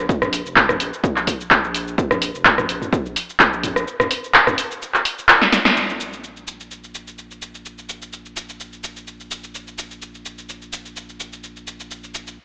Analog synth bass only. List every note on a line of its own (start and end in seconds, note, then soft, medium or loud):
0.09 0.42 A#1 loud
0.46 0.77 F1 medium
0.80 0.91 A#1 medium
1.16 1.26 A#1 medium
1.64 1.95 A#1 medium
1.98 2.31 A#1 loud
2.34 2.66 F1 medium
2.69 2.80 A#1 medium
3.05 3.15 A#1 medium
3.53 3.84 A#1 medium
5.76 12.38 A#1 medium